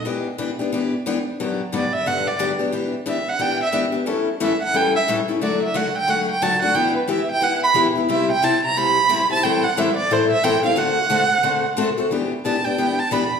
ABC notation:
X:1
M:4/4
L:1/8
Q:"Swing" 1/4=179
K:Em
V:1 name="Violin"
z8 | [K:G] z2 d e f d z2 | z2 e f g e z2 | z2 e f g e z2 |
d e f g f g a f | g B e g f b z2 | e g a _b =b3 a | g f e d c e g =f |
f6 z2 | [K:Em] z2 a g2 a b z |]
V:2 name="Steel-string acoustic guitar"
[E,B,DG] z [E,B,DG] [B,DG] [E,B,DG] z [E,B,DG] z | [K:G] [G,,D,F,B,DG] z [G,,D,F,B,DG] z [G,,D,F,B,DG] z [G,,D,F,B,DG] [F,B,DG] | [E,B,DG] z [E,B,DG] z [E,B,DG] z [E,B,DG] [B,DG] | [A,,E,G,^CEA] z [A,,E,G,CEA] z [A,,E,G,CEA] z [A,,E,G,CEA] [G,CEA] |
[D,F,A,DF] z [D,F,A,DF] z [D,F,A,DF] z [D,F,A,DF] [A,DF] | [E,B,EG] z [E,B,EG] z [E,B,EG] z [E,B,EG] [B,EG] | [C,G,CEG] z [C,G,CEG] z [C,G,CEG] z [C,G,CEG] [CEG] | [A,,E,G,CEA] z [A,,E,G,CEA] z [A,,E,G,CEA] z [A,,E,G,CEA] [G,CEA] |
[D,A,CFA] z [D,A,CFA] z [D,A,CFA] z [D,A,CFA] [CFA] | [K:Em] [E,B,DG] z [E,B,DG] [B,DG] [E,B,DG] z [E,B,DG] z |]